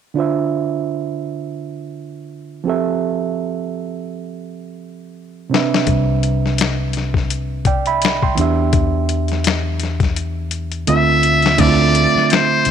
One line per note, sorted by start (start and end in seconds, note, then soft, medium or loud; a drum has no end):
0.14 2.61 D3 medium
0.14 2.62 D4 medium
0.14 2.62 F4 medium
0.18 2.63 C5 medium
0.18 2.64 E5 medium
2.64 5.47 F3 medium
2.64 5.47 C4 medium
2.64 5.48 G4 soft
2.68 5.49 A4 medium
2.68 5.49 E5 medium
5.50 8.32 C3 medium
5.50 8.33 C4 medium
5.50 8.34 D4 medium
5.54 8.34 B4 medium
5.54 7.64 E5 medium
5.54 snare medium
5.74 snare medium
5.87 8.33 C2 medium
5.87 kick medium
5.87 closed hi-hat medium
6.23 closed hi-hat medium
6.46 snare soft
6.58 finger snap medium
6.58 snare medium
6.58 closed hi-hat medium
6.93 snare soft
6.93 closed hi-hat medium
7.14 kick medium
7.14 snare soft
7.30 closed hi-hat medium
7.65 7.86 D5 soft
7.65 7.86 G5 medium
7.65 kick medium
7.65 closed hi-hat medium
7.86 8.21 E5 soft
7.86 8.21 B5 medium
7.86 closed hi-hat soft
8.02 snare medium
8.02 closed hi-hat medium
8.06 finger snap medium
8.23 8.57 G5 soft
8.23 8.56 C6 medium
8.23 kick medium
8.35 10.84 E2 medium
8.35 10.82 E3 medium
8.35 10.83 B3 medium
8.35 10.84 D4 medium
8.35 closed hi-hat medium
8.40 10.84 G4 medium
8.40 10.85 E5 medium
8.73 kick medium
8.73 closed hi-hat medium
9.09 closed hi-hat medium
9.28 snare soft
9.28 closed hi-hat soft
9.44 finger snap medium
9.44 snare medium
9.44 closed hi-hat medium
9.80 snare soft
9.80 closed hi-hat medium
10.00 kick medium
10.00 snare soft
10.00 closed hi-hat soft
10.16 closed hi-hat medium
10.51 closed hi-hat medium
10.72 closed hi-hat soft
10.87 11.55 D2 medium
10.87 11.57 D3 medium
10.87 11.58 A3 medium
10.87 11.59 C4 medium
10.87 11.60 F4 medium
10.87 10.96 D#5 medium
10.87 11.62 E5 medium
10.87 closed hi-hat medium
10.96 11.60 E5 medium
11.23 closed hi-hat medium
11.42 snare medium
11.42 closed hi-hat soft
11.58 12.05 D2 medium
11.58 12.71 D3 medium
11.58 12.71 A3 medium
11.58 12.71 C4 medium
11.58 11.67 E4 medium
11.58 12.31 D5 medium
11.58 12.71 E5 medium
11.58 kick medium
11.58 closed hi-hat medium
11.58 crash medium
11.67 12.71 F4 medium
11.95 closed hi-hat medium
12.15 muted fingered electric bass stroke soft
12.15 snare soft
12.30 12.71 C5 medium
12.30 finger snap medium
12.30 snare medium
12.30 closed hi-hat medium
12.65 12.71 D2 medium
12.65 closed hi-hat medium